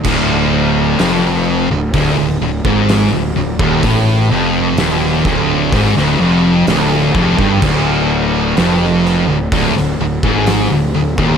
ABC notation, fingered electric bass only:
X:1
M:4/4
L:1/16
Q:1/4=63
K:C
V:1 name="Fingered electric bass" clef=bass
D,,,4 F,,,3 D,,, D,,, D,,, D,,, ^G,,,2 D,,, D,,, _E,,, | A,,,2 F,,,2 _E,,,2 D,,,2 ^G,,, D,,, F,,,2 D,,,2 F,,, =G,,, | D,,,4 F,,,3 D,,, D,,, D,,, D,,, ^G,,,2 D,,, D,,, _E,,, |]